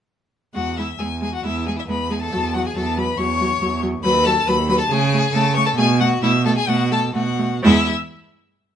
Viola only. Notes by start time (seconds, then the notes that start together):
0.55 G#3
0.78 G#3
1.00 G#3
1.22 G#3
1.45 G#3
1.67 G#3
1.89 G#3
2.10 G#3
2.32 F#3
2.55 F#3
2.76 F#3
2.97 F#3
3.19 F#3
3.40 F#3
3.61 F#3
3.82 F#3
4.04 F#3
4.26 F#3
4.48 F#3
4.69 F#3
4.91 A3
5.13 A3
5.35 A3
5.57 A3
5.78 A3
6.00 A3
6.23 A3
6.45 A3
6.68 A3
6.91 A3
7.15 A3
7.39 A3
7.63 G#3